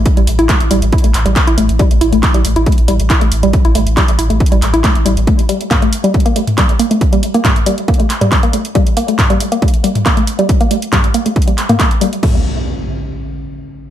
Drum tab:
CC |--------------------------------|--------------------------------|--------------------------------|--------------------------------|
HH |x-x-o-x-x-x-o-x-xxx-o-x-x-x-o-x-|x-x-o-x-x-x-o-x-xxx-o-x-x-x-o-x-|x-x-o-x-x-x-o-x-xxx-o-x-x-x-o-x-|x-x-o-x-x-x-o-x-xxx-o-x-x-x-o-x-|
CP |--------x-----------x---x-------|--------x---------------x-------|--------x-----------x---x-------|--------x---------------x-------|
T2 |--------------------------------|--------------------------------|--------------------------------|--------o-------------o---------|
BD |o-------o-------o-------o-------|o-------o-------o-------o-------|o-------o-------o-------o-------|o-------o-------o-------o-------|

CC |--------------------------------|--------------------------------|--------------------------------|x-------------------------------|
HH |x-x-o-x-x-x-o-x-xxx-o-x-x-x-o-x-|x-x-o-x-x-x-o-x-xxx-o-x-x-x-o-x-|x-x-o-x-x-x-o-x-xxx-o-x-x-x-o-x-|--------------------------------|
CP |--------x-----------x---x-------|--------x---------------x-------|--------x-----------x---x-------|--------------------------------|
T2 |--------o-------------o---------|--------o-------------o---------|--------o-------------o---------|--------------------------------|
BD |o-------o-------o-------o-------|o-------o-------o-------o-------|o-------o-------o-------o-------|o-------------------------------|